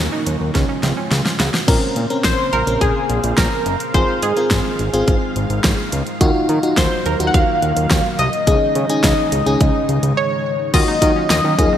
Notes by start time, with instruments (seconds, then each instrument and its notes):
Already playing: string machine D#3 F#3 A#3 F#4
0.12 synth arpeggio sound D#4
0.27 analog synth bass D#2, closed hi-hat
0.41 analog synth bass D#2
0.55 analog synth bass C#2, string machine C#3 F3 G#3 F4, synth arpeggio sound C#4, kick, snare, closed hi-hat
0.69 synth arpeggio sound C#4
0.83 analog synth bass C#2, synth arpeggio sound C4, snare, closed hi-hat
0.97 synth arpeggio sound C#4
1.11 analog synth bass C#2, snare, closed hi-hat
1.26 snare
1.40 analog synth bass C#2, synth arpeggio sound F#4, snare, closed hi-hat
1.54 snare
1.68 analog synth bass A#1, string machine C#3 A#3 C5 F5, fm electric piano C4 C#4 A#4, kick, closed hi-hat, crash
1.96 analog synth bass A#2, closed hi-hat
2.10 fm electric piano C4 C#4 A#4, closed hi-hat
2.24 analog synth bass A#1, analog polysynth C5, kick, snare, closed hi-hat
2.53 analog synth bass A#1, analog polysynth A#4, closed hi-hat
2.67 analog synth bass A#1, fm electric piano C4 C#4 A#4, closed hi-hat
2.81 analog synth bass A#1, analog polysynth G#4, kick, closed hi-hat
3.10 analog synth bass A#1, closed hi-hat
3.24 analog synth bass A#1, closed hi-hat
3.38 analog synth bass A#1, analog polysynth A#4, kick, snare, closed hi-hat
3.66 analog synth bass F#1, closed hi-hat
3.80 closed hi-hat
3.94 analog synth bass G#1, string machine D#3 G#3, fm electric piano C4 F4 G#4, analog polysynth C5, kick, closed hi-hat
4.22 analog synth bass G#2, analog polysynth G#4, closed hi-hat
4.37 fm electric piano C4 F4 A#4, closed hi-hat
4.51 analog synth bass G#1, kick, snare, closed hi-hat
4.79 analog synth bass G#1, closed hi-hat
4.94 analog synth bass G#1, fm electric piano C4 F4 G#4, closed hi-hat
5.08 analog synth bass G#1, kick, closed hi-hat
5.36 analog synth bass G#1, closed hi-hat
5.50 analog synth bass G#1, closed hi-hat
5.64 analog synth bass G#1, kick, snare, closed hi-hat
5.92 analog synth bass C#2, closed hi-hat
6.07 closed hi-hat
6.21 analog synth bass D#2, string machine F#3 A#3, fm electric piano D#4 F4 F#4, kick, closed hi-hat
6.49 analog synth bass D#3, closed hi-hat
6.63 fm electric piano D#4 F4 F#4, closed hi-hat
6.77 analog synth bass D#2, analog polysynth C5, kick, snare, closed hi-hat
7.06 analog synth bass D#2, analog polysynth A#4, closed hi-hat
7.20 analog synth bass D#2, fm electric piano D#4 F4 F#4, closed hi-hat
7.27 analog polysynth F#5
7.34 analog synth bass D#2, analog polysynth F5, kick, closed hi-hat
7.62 analog synth bass D#2, closed hi-hat
7.77 analog synth bass D#2, closed hi-hat
7.91 analog synth bass D#2, kick, snare, closed hi-hat
8.19 analog synth bass C2, analog polysynth D#5, closed hi-hat
8.33 closed hi-hat
8.47 analog synth bass C#2, string machine C#3 G#3 D#4, fm electric piano C#4 D#4 G#4, kick, closed hi-hat
8.75 analog synth bass C#3, closed hi-hat
8.90 fm electric piano C#4 D#4 G#4, closed hi-hat
9.04 analog synth bass C#2, kick, snare, closed hi-hat
9.32 analog synth bass C#2, closed hi-hat
9.46 analog synth bass C#2, fm electric piano C#4 D#4 G#4, closed hi-hat
9.61 analog synth bass C#2, kick, closed hi-hat
9.89 analog synth bass C#2, closed hi-hat
10.03 analog synth bass C#2, closed hi-hat
10.17 analog polysynth C#5
10.74 analog synth bass D#2, string machine D#3 F#3 A#3 F5, fm electric piano D#4 F4 F#4, synth arpeggio sound F4, analog polysynth D#5, kick, closed hi-hat, crash
10.88 synth arpeggio sound D#4
11.02 analog synth bass D#3, fm electric piano D#4 F4 F#4, kick, closed hi-hat
11.16 synth arpeggio sound C#4
11.30 analog synth bass D#2, analog polysynth D#5, snare, closed hi-hat
11.44 analog synth bass D#3, synth arpeggio sound C#4
11.59 analog synth bass D#2, fm electric piano D#4 F4 G#4, kick, closed hi-hat
11.73 synth arpeggio sound C4